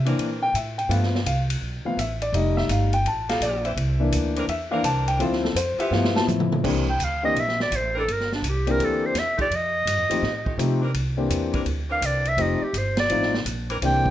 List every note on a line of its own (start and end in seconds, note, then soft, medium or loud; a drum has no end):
0.00 0.17 C3 medium
0.05 0.26 E3 medium
0.05 0.52 E3 medium
0.05 0.27 A#3 soft
0.05 0.52 C4 medium
0.05 0.52 D4 medium
0.05 0.27 D4 soft
0.05 0.52 A#4 loud
0.05 ride medium
0.18 0.53 A#2 medium
0.18 ride medium
0.42 0.54 G5 medium
0.54 0.88 A2 medium
0.54 0.78 E5 medium
0.54 hi-hat pedal medium
0.54 ride medium
0.78 0.90 G5 medium
0.78 ride soft
0.89 1.24 G2 loud
0.89 1.17 F3 soft
0.89 1.06 G3 medium
0.89 1.17 A3 soft
0.89 1.06 B3 medium
0.89 1.17 B3 medium
0.89 1.06 F4 medium
0.89 1.05 A4 medium
0.89 1.24 F5 medium
0.89 ride medium
1.03 snare soft
1.15 snare medium
1.25 1.60 C2 medium
1.25 1.40 F5 medium
1.25 hi-hat pedal soft
1.25 ride medium
1.50 ride medium
1.61 1.83 B1 medium
1.85 1.96 F3 soft
1.85 1.97 A3 soft
1.85 1.97 B3 soft
1.85 1.98 F5 medium
1.85 muted upright bass stroke soft
1.97 2.32 A1 medium
1.97 2.21 E5 medium
1.97 hi-hat pedal medium
1.97 ride medium
2.22 2.34 D5 medium
2.22 ride medium
2.32 2.68 F1 loud
2.32 2.90 G3 medium
2.32 2.90 A3 soft
2.32 2.90 D#4 medium
2.32 2.57 D#5 medium
2.32 ride medium
2.57 2.69 E5 medium
2.57 snare soft
2.69 3.04 G1 medium
2.69 2.93 F5 medium
2.69 hi-hat pedal medium
2.69 ride medium
2.93 3.05 G5 medium
2.93 ride medium
3.05 3.40 A1 medium
3.05 3.29 A5 medium
3.05 ride medium
3.29 3.62 G3 medium
3.29 3.63 D#4 medium
3.29 3.62 F4 medium
3.29 3.62 A4 loud
3.29 3.41 F5 medium
3.29 snare soft
3.29 ride medium
3.41 3.76 A#1 loud
3.41 3.64 D5 medium
3.41 hi-hat pedal medium
3.41 ride medium
3.64 3.73 E3 loud
3.64 3.73 C4 medium
3.64 3.73 D4 medium
3.64 3.73 C5 loud
3.64 4.10 E5 medium
3.64 ride soft
3.76 4.11 C2 loud
3.76 ride medium
3.99 4.46 E3 medium
3.99 4.46 A#3 soft
3.99 4.46 D4 medium
4.12 4.47 D2 loud
4.12 hi-hat pedal medium
4.12 ride medium
4.36 4.45 E3 loud
4.36 4.45 C4 medium
4.36 4.45 D4 medium
4.36 4.45 A#4 loud
4.36 ride medium
4.48 4.83 E2 medium
4.48 4.72 E5 medium
4.48 ride medium
4.71 4.82 E3 medium
4.71 5.17 E3 loud
4.71 4.83 A#3 soft
4.71 5.18 C4 loud
4.71 5.18 D4 loud
4.71 4.83 D4 medium
4.71 5.18 A#4 loud
4.71 4.84 F5 medium
4.83 5.18 C2 loud
4.83 5.07 A5 loud
4.83 hi-hat pedal medium
4.83 ride medium
5.08 5.20 G5 medium
5.08 ride medium
5.19 5.54 D2 medium
5.19 5.47 F3 medium
5.19 5.36 F3 medium
5.19 5.47 C4 soft
5.19 5.36 C4 medium
5.19 5.36 D4 medium
5.19 5.47 E4 medium
5.19 5.36 A4 medium
5.19 5.43 F5 medium
5.19 ride medium
5.32 snare soft
5.44 5.56 A4 medium
5.44 snare medium
5.55 5.77 F2 loud
5.55 5.79 C5 medium
5.55 hi-hat pedal medium
5.55 ride medium
5.78 6.24 F3 loud
5.78 6.25 B3 loud
5.78 6.25 E4 loud
5.78 6.25 G4 loud
5.78 5.92 E5 medium
5.78 muted upright bass stroke soft
5.78 ride medium
5.90 6.26 G2 medium
5.90 6.60 F3 medium
5.90 6.60 A3 medium
5.90 6.60 B3 soft
5.90 6.60 E4 medium
5.90 6.15 F5 medium
5.90 snare medium
6.04 snare medium
6.16 6.23 A5 medium
6.16 snare medium
6.27 6.62 A2 loud
6.27 hi-hat pedal medium
6.27 high tom medium
6.40 mid tom medium
6.52 mid tom medium
6.63 6.97 C2 medium
6.63 6.84 E3 medium
6.63 6.84 A#3 medium
6.63 6.85 C4 medium
6.63 6.85 D4 medium
6.63 6.85 G4 medium
6.63 kick medium
6.63 crash medium
6.89 7.06 G5 medium
6.98 7.33 D2 medium
6.98 hi-hat pedal medium
6.98 ride medium
7.04 7.24 F5 medium
7.23 7.34 E3 medium
7.23 7.34 A#3 medium
7.23 7.34 C4 medium
7.23 7.34 D4 medium
7.23 7.35 G4 medium
7.23 7.41 D#5 loud
7.35 7.70 A#1 medium
7.35 ride medium
7.40 7.61 E5 loud
7.48 snare soft
7.60 7.78 D5 loud
7.60 snare medium
7.70 8.06 A1 medium
7.70 hi-hat pedal medium
7.70 ride medium
7.76 7.97 C5 medium
7.95 8.03 E3 loud
7.95 8.03 C4 medium
7.95 8.03 D4 medium
7.95 8.13 A4 medium
7.95 8.03 A#4 loud
8.06 8.41 G1 medium
8.06 ride medium
8.12 8.33 A#4 loud
8.20 snare soft
8.32 8.51 D4 medium
8.32 snare soft
8.42 8.77 C2 medium
8.42 hi-hat pedal medium
8.42 ride medium
8.49 8.72 G4 medium
8.66 9.12 E3 medium
8.66 9.12 A#3 medium
8.66 9.13 C4 medium
8.66 9.13 D4 medium
8.66 9.13 G4 medium
8.66 ride medium
8.71 8.86 A#4 loud
8.78 9.13 D2 medium
8.78 ride medium
8.84 9.08 A4 medium
9.06 9.20 C5 medium
9.14 9.49 E2 medium
9.14 snare soft
9.14 hi-hat pedal medium
9.14 ride medium
9.19 9.40 E5 loud
9.37 9.46 F3 medium
9.37 9.46 A3 medium
9.37 9.46 D#4 loud
9.37 9.46 G4 loud
9.37 kick medium
9.37 ride soft
9.41 9.57 D5 loud
9.50 9.85 F2 medium
9.50 ride medium
9.56 10.61 D#5 loud
9.85 9.98 G2 loud
9.85 hi-hat pedal medium
9.85 ride medium
9.98 10.10 F2 medium
10.10 10.21 D#2 medium
10.10 10.21 F3 medium
10.10 10.21 A3 medium
10.10 10.21 C4 medium
10.10 10.21 D#4 medium
10.10 10.22 G4 medium
10.10 ride medium
10.22 10.57 A2 medium
10.22 snare soft
10.45 10.79 F3 medium
10.45 10.79 A3 medium
10.45 10.79 D#4 medium
10.45 10.79 G4 medium
10.45 kick medium
10.57 10.93 C3 medium
10.57 10.80 F3 medium
10.57 10.79 A3 medium
10.57 10.79 C4 medium
10.57 10.80 D#4 medium
10.57 10.80 G4 medium
10.57 hi-hat pedal medium
10.57 ride medium
10.82 10.90 E3 medium
10.82 10.91 C4 medium
10.82 10.90 D4 medium
10.82 10.90 A#4 loud
10.94 11.29 C2 medium
10.94 ride medium
11.17 11.63 E3 medium
11.17 11.63 A#3 medium
11.17 11.64 C4 medium
11.17 11.64 D4 medium
11.17 11.64 G4 medium
11.29 11.65 E2 medium
11.29 hi-hat pedal medium
11.29 ride medium
11.53 11.62 E3 medium
11.53 11.62 C4 medium
11.53 11.62 D4 medium
11.53 11.62 A#4 loud
11.53 kick medium
11.53 ride soft
11.66 12.01 D2 medium
11.66 ride medium
11.90 12.36 E3 medium
11.90 12.36 C4 medium
11.90 12.36 D4 medium
11.90 12.36 A#4 loud
11.90 12.07 F5 loud
12.01 12.36 C2 medium
12.01 hi-hat pedal medium
12.01 ride medium
12.06 12.30 D5 medium
12.25 12.43 E5 loud
12.25 ride soft
12.37 12.59 F1 medium
12.37 12.59 F3 medium
12.37 12.59 A3 medium
12.37 12.59 C4 medium
12.37 12.60 D#4 medium
12.37 12.59 G4 medium
12.37 ride medium
12.41 12.65 D#5 loud
12.61 12.80 G4 medium
12.61 muted upright bass stroke soft
12.73 13.09 G1 medium
12.73 hi-hat pedal medium
12.73 ride medium
12.78 12.99 C5 medium
12.97 13.44 D5 loud
12.97 snare medium
12.97 ride medium
13.09 13.45 A1 medium
13.09 13.31 F3 medium
13.09 13.31 A3 medium
13.09 13.31 C4 medium
13.09 13.31 D#4 medium
13.09 13.32 F4 medium
13.09 ride medium
13.22 snare soft
13.34 snare medium
13.45 13.80 A#1 loud
13.45 hi-hat pedal medium
13.45 ride medium
13.69 13.78 E3 loud
13.69 13.78 C4 medium
13.69 13.78 D4 medium
13.69 13.78 A#4 loud
13.69 ride soft
13.81 14.10 C2 medium
13.81 14.10 E3 medium
13.81 14.10 A#3 medium
13.81 14.10 C4 medium
13.81 14.10 D4 medium
13.81 14.10 G4 medium
13.81 ride medium
13.86 14.10 G5 loud
14.06 kick medium